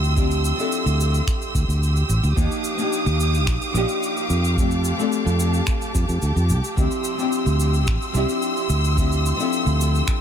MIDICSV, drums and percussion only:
0, 0, Header, 1, 2, 480
1, 0, Start_track
1, 0, Key_signature, -1, "minor"
1, 0, Tempo, 550459
1, 146, Time_signature, 4, 2, 24, 8
1, 8902, End_track
2, 0, Start_track
2, 0, Title_t, "Drums"
2, 35, Note_on_c, 9, 69, 42
2, 122, Note_off_c, 9, 69, 0
2, 147, Note_on_c, 9, 36, 116
2, 147, Note_on_c, 9, 69, 55
2, 234, Note_off_c, 9, 36, 0
2, 234, Note_off_c, 9, 69, 0
2, 270, Note_on_c, 9, 69, 37
2, 358, Note_off_c, 9, 69, 0
2, 390, Note_on_c, 9, 69, 73
2, 477, Note_off_c, 9, 69, 0
2, 516, Note_on_c, 9, 69, 49
2, 603, Note_off_c, 9, 69, 0
2, 627, Note_on_c, 9, 69, 66
2, 714, Note_off_c, 9, 69, 0
2, 756, Note_on_c, 9, 69, 41
2, 843, Note_off_c, 9, 69, 0
2, 875, Note_on_c, 9, 69, 79
2, 963, Note_off_c, 9, 69, 0
2, 995, Note_on_c, 9, 69, 49
2, 1083, Note_off_c, 9, 69, 0
2, 1107, Note_on_c, 9, 36, 112
2, 1113, Note_on_c, 9, 26, 65
2, 1115, Note_on_c, 9, 69, 48
2, 1194, Note_off_c, 9, 36, 0
2, 1200, Note_off_c, 9, 26, 0
2, 1202, Note_off_c, 9, 69, 0
2, 1237, Note_on_c, 9, 69, 41
2, 1324, Note_off_c, 9, 69, 0
2, 1347, Note_on_c, 9, 36, 93
2, 1354, Note_on_c, 9, 69, 74
2, 1435, Note_off_c, 9, 36, 0
2, 1441, Note_off_c, 9, 69, 0
2, 1480, Note_on_c, 9, 69, 48
2, 1567, Note_off_c, 9, 69, 0
2, 1596, Note_on_c, 9, 69, 54
2, 1683, Note_off_c, 9, 69, 0
2, 1711, Note_on_c, 9, 69, 37
2, 1798, Note_off_c, 9, 69, 0
2, 1827, Note_on_c, 9, 69, 77
2, 1914, Note_off_c, 9, 69, 0
2, 1950, Note_on_c, 9, 69, 43
2, 2038, Note_off_c, 9, 69, 0
2, 2067, Note_on_c, 9, 36, 112
2, 2072, Note_on_c, 9, 69, 49
2, 2154, Note_off_c, 9, 36, 0
2, 2159, Note_off_c, 9, 69, 0
2, 2193, Note_on_c, 9, 69, 40
2, 2280, Note_off_c, 9, 69, 0
2, 2303, Note_on_c, 9, 69, 74
2, 2390, Note_off_c, 9, 69, 0
2, 2428, Note_on_c, 9, 69, 49
2, 2515, Note_off_c, 9, 69, 0
2, 2553, Note_on_c, 9, 69, 60
2, 2640, Note_off_c, 9, 69, 0
2, 2673, Note_on_c, 9, 69, 38
2, 2760, Note_off_c, 9, 69, 0
2, 2792, Note_on_c, 9, 69, 84
2, 2879, Note_off_c, 9, 69, 0
2, 2915, Note_on_c, 9, 69, 45
2, 3002, Note_off_c, 9, 69, 0
2, 3027, Note_on_c, 9, 26, 74
2, 3027, Note_on_c, 9, 36, 121
2, 3030, Note_on_c, 9, 69, 56
2, 3114, Note_off_c, 9, 26, 0
2, 3114, Note_off_c, 9, 36, 0
2, 3117, Note_off_c, 9, 69, 0
2, 3152, Note_on_c, 9, 69, 37
2, 3239, Note_off_c, 9, 69, 0
2, 3270, Note_on_c, 9, 69, 88
2, 3357, Note_off_c, 9, 69, 0
2, 3388, Note_on_c, 9, 69, 41
2, 3475, Note_off_c, 9, 69, 0
2, 3514, Note_on_c, 9, 69, 59
2, 3601, Note_off_c, 9, 69, 0
2, 3635, Note_on_c, 9, 69, 39
2, 3722, Note_off_c, 9, 69, 0
2, 3749, Note_on_c, 9, 69, 74
2, 3836, Note_off_c, 9, 69, 0
2, 3875, Note_on_c, 9, 69, 51
2, 3962, Note_off_c, 9, 69, 0
2, 3987, Note_on_c, 9, 36, 120
2, 3997, Note_on_c, 9, 69, 59
2, 4074, Note_off_c, 9, 36, 0
2, 4085, Note_off_c, 9, 69, 0
2, 4108, Note_on_c, 9, 69, 37
2, 4196, Note_off_c, 9, 69, 0
2, 4224, Note_on_c, 9, 69, 82
2, 4311, Note_off_c, 9, 69, 0
2, 4357, Note_on_c, 9, 69, 45
2, 4444, Note_off_c, 9, 69, 0
2, 4467, Note_on_c, 9, 69, 52
2, 4554, Note_off_c, 9, 69, 0
2, 4597, Note_on_c, 9, 69, 42
2, 4684, Note_off_c, 9, 69, 0
2, 4706, Note_on_c, 9, 69, 87
2, 4793, Note_off_c, 9, 69, 0
2, 4828, Note_on_c, 9, 69, 46
2, 4915, Note_off_c, 9, 69, 0
2, 4942, Note_on_c, 9, 26, 66
2, 4943, Note_on_c, 9, 69, 55
2, 4947, Note_on_c, 9, 36, 116
2, 5030, Note_off_c, 9, 26, 0
2, 5030, Note_off_c, 9, 69, 0
2, 5034, Note_off_c, 9, 36, 0
2, 5072, Note_on_c, 9, 69, 41
2, 5159, Note_off_c, 9, 69, 0
2, 5187, Note_on_c, 9, 36, 101
2, 5188, Note_on_c, 9, 69, 83
2, 5274, Note_off_c, 9, 36, 0
2, 5275, Note_off_c, 9, 69, 0
2, 5309, Note_on_c, 9, 69, 45
2, 5396, Note_off_c, 9, 69, 0
2, 5424, Note_on_c, 9, 69, 60
2, 5511, Note_off_c, 9, 69, 0
2, 5553, Note_on_c, 9, 69, 34
2, 5640, Note_off_c, 9, 69, 0
2, 5663, Note_on_c, 9, 69, 90
2, 5750, Note_off_c, 9, 69, 0
2, 5791, Note_on_c, 9, 69, 51
2, 5878, Note_off_c, 9, 69, 0
2, 5907, Note_on_c, 9, 36, 117
2, 5909, Note_on_c, 9, 69, 48
2, 5994, Note_off_c, 9, 36, 0
2, 5996, Note_off_c, 9, 69, 0
2, 6027, Note_on_c, 9, 69, 42
2, 6114, Note_off_c, 9, 69, 0
2, 6140, Note_on_c, 9, 69, 80
2, 6227, Note_off_c, 9, 69, 0
2, 6270, Note_on_c, 9, 69, 44
2, 6357, Note_off_c, 9, 69, 0
2, 6385, Note_on_c, 9, 69, 54
2, 6473, Note_off_c, 9, 69, 0
2, 6509, Note_on_c, 9, 69, 36
2, 6596, Note_off_c, 9, 69, 0
2, 6626, Note_on_c, 9, 69, 76
2, 6713, Note_off_c, 9, 69, 0
2, 6747, Note_on_c, 9, 69, 46
2, 6834, Note_off_c, 9, 69, 0
2, 6861, Note_on_c, 9, 69, 54
2, 6866, Note_on_c, 9, 36, 112
2, 6869, Note_on_c, 9, 26, 67
2, 6948, Note_off_c, 9, 69, 0
2, 6953, Note_off_c, 9, 36, 0
2, 6956, Note_off_c, 9, 26, 0
2, 6992, Note_on_c, 9, 69, 37
2, 7079, Note_off_c, 9, 69, 0
2, 7103, Note_on_c, 9, 69, 76
2, 7190, Note_off_c, 9, 69, 0
2, 7230, Note_on_c, 9, 69, 42
2, 7317, Note_off_c, 9, 69, 0
2, 7343, Note_on_c, 9, 69, 58
2, 7430, Note_off_c, 9, 69, 0
2, 7471, Note_on_c, 9, 69, 36
2, 7558, Note_off_c, 9, 69, 0
2, 7582, Note_on_c, 9, 69, 84
2, 7669, Note_off_c, 9, 69, 0
2, 7710, Note_on_c, 9, 69, 44
2, 7798, Note_off_c, 9, 69, 0
2, 7825, Note_on_c, 9, 36, 110
2, 7829, Note_on_c, 9, 69, 58
2, 7912, Note_off_c, 9, 36, 0
2, 7916, Note_off_c, 9, 69, 0
2, 7954, Note_on_c, 9, 69, 40
2, 8041, Note_off_c, 9, 69, 0
2, 8072, Note_on_c, 9, 69, 74
2, 8160, Note_off_c, 9, 69, 0
2, 8195, Note_on_c, 9, 69, 45
2, 8282, Note_off_c, 9, 69, 0
2, 8306, Note_on_c, 9, 69, 56
2, 8393, Note_off_c, 9, 69, 0
2, 8428, Note_on_c, 9, 69, 37
2, 8515, Note_off_c, 9, 69, 0
2, 8553, Note_on_c, 9, 69, 85
2, 8640, Note_off_c, 9, 69, 0
2, 8676, Note_on_c, 9, 69, 42
2, 8763, Note_off_c, 9, 69, 0
2, 8785, Note_on_c, 9, 36, 106
2, 8786, Note_on_c, 9, 26, 68
2, 8786, Note_on_c, 9, 69, 54
2, 8872, Note_off_c, 9, 36, 0
2, 8873, Note_off_c, 9, 69, 0
2, 8874, Note_off_c, 9, 26, 0
2, 8902, End_track
0, 0, End_of_file